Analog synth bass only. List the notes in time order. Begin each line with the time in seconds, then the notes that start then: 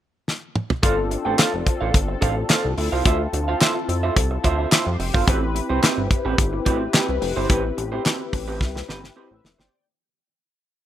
0.83 G1
1.26 A1
1.54 F1
1.82 A1
1.94 G1
2.22 A1
2.65 C2
2.78 D2
2.93 C2
3.06 D2
3.33 D2
3.89 F2
4.17 C2
4.44 D2
4.87 F2
5.00 F1
5.15 G1
5.28 A1
5.70 C2
5.98 G1
6.25 A1
6.38 G1
6.66 A1
7.09 C2
7.22 F1
7.37 G1
7.50 A1
7.78 A1
8.33 A1
8.61 C2
8.89 G1
9.31 A1
9.44 F1
9.59 G1